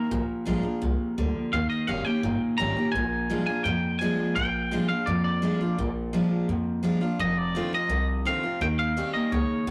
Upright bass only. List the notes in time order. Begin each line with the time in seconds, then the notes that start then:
0.11 A#1
0.29 muted upright bass stroke
0.47 A#1
0.65 muted upright bass stroke
0.82 C2
1.00 muted upright bass stroke
1.18 D2
1.36 muted upright bass stroke
1.53 D#2
1.70 muted upright bass stroke
1.88 F1
2.06 muted upright bass stroke
2.23 G1
2.41 muted upright bass stroke
2.60 G#1
2.77 muted upright bass stroke
2.94 A#1
3.48 muted upright bass stroke
3.65 F2
4.18 muted upright bass stroke
4.36 A#1
4.89 muted upright bass stroke
5.07 F2
5.60 muted upright bass stroke
5.78 A#1
6.31 muted upright bass stroke
6.49 F2
7.01 muted upright bass stroke
7.19 F1
7.71 muted upright bass stroke
7.89 C2
8.42 muted upright bass stroke
8.61 D#2
9.14 muted upright bass stroke
9.32 C#2
9.50 muted upright bass stroke
9.67 C2